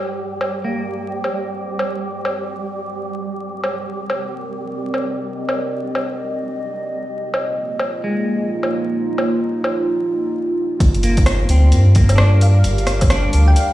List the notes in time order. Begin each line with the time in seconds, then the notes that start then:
Already playing: G3 G4 A#4 G5
0.34 C5
0.41 low woodblock
0.65 A#3
1.24 low woodblock
1.79 low woodblock
2.25 low woodblock
3.42 C4
3.61 A#4, low woodblock
3.66 D5
4.06 D#5, low woodblock
4.94 low woodblock
5.49 low woodblock
5.95 low woodblock
7.12 A#3
7.17 F4
7.34 low woodblock
7.43 D#4
7.79 low woodblock
8.04 G#3
8.63 low woodblock
9.18 low woodblock
9.64 low woodblock
10.80 G1 G3, kick, closed hi-hat
10.94 closed hi-hat
11.02 A#3 G4, open hi-hat
11.17 kick, closed hi-hat
11.23 A#4, cross-stick, closed hi-hat
11.49 D2 C4 F5, open hi-hat
11.72 G2, closed hi-hat
11.95 A#3, kick, open hi-hat
12.09 closed hi-hat, low woodblock
12.15 D4 D5, cross-stick
12.41 F5, open hi-hat
12.64 G1, closed hi-hat
12.78 closed hi-hat
12.87 cross-stick, open hi-hat
13.01 kick, closed hi-hat, low woodblock
13.10 D4, cross-stick, closed hi-hat
13.33 D2, open hi-hat
13.48 G5
13.56 closed hi-hat